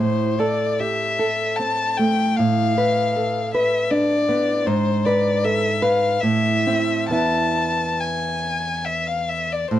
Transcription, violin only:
0.00 0.41 C5 soft
0.39 0.81 D5 soft
0.80 1.58 E5 medium
1.56 1.99 A5 medium
1.97 2.38 G5 medium
2.37 3.53 F5 medium
3.54 3.92 E5 medium
3.91 4.68 D5 medium
4.66 5.07 C5 medium
5.05 5.45 D5 soft
5.44 5.84 E5 medium
5.82 6.22 F5 medium
6.20 7.11 E5 medium
7.12 8.02 A5 medium
8.01 8.87 G#5 soft
8.85 9.09 E5 medium
9.07 9.30 F5 soft
9.29 9.54 E5 soft
9.52 9.70 D5 soft
9.71 9.79 C5 soft

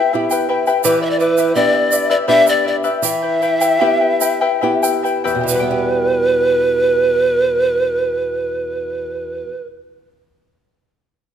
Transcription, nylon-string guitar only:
0.14 0.71 B3 medium
0.14 0.71 E4 medium
0.14 0.71 G4 medium
0.85 1.54 E3 medium
1.55 2.14 B3 medium
1.55 2.14 D4 soft
1.55 2.14 G4 medium
2.28 2.88 B3 medium
2.28 2.88 D4 medium
2.28 2.89 G4 medium
3.02 3.78 E3 medium
3.81 4.46 B3 medium
3.81 4.46 E4 soft
3.81 4.46 G4 medium
4.63 5.31 B3 medium
4.63 5.32 E4 medium
4.63 5.32 G4 medium
5.25 9.43 E2 medium
5.35 9.52 B2 medium
5.43 9.61 E3 medium
5.53 9.70 G3 medium
5.62 9.79 B3 medium
5.71 9.88 G4 medium

